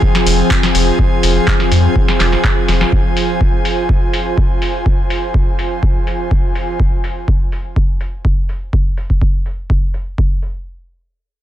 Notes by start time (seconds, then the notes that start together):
Already playing: F3 C4 F4 G#4 C5 G#5
0.02 kick
0.15 snare
0.26 F1, open hi-hat
0.51 kick, clap
0.63 snare
0.75 F1, open hi-hat
0.99 kick
1.23 F1, open hi-hat
1.47 kick, clap
1.60 snare
1.72 F2, open hi-hat
1.96 kick
2.08 snare
2.20 F1, snare, clap, open hi-hat
2.33 snare
2.44 kick, clap
2.68 F1, snare, open hi-hat
2.81 snare
2.92 kick
3.17 open hi-hat
3.41 kick
3.65 open hi-hat
3.89 kick
4.13 open hi-hat
4.38 kick
4.62 open hi-hat
4.86 kick
5.10 open hi-hat
5.34 kick
5.59 open hi-hat
5.83 kick
6.07 open hi-hat
6.31 kick
6.55 open hi-hat
6.80 kick
7.04 open hi-hat
7.28 kick
7.52 open hi-hat
7.76 kick
8.01 open hi-hat
8.25 kick
8.49 open hi-hat
8.73 kick
8.97 open hi-hat
9.10 kick
9.22 kick
9.46 open hi-hat
9.70 kick
9.94 open hi-hat
10.18 kick
10.42 open hi-hat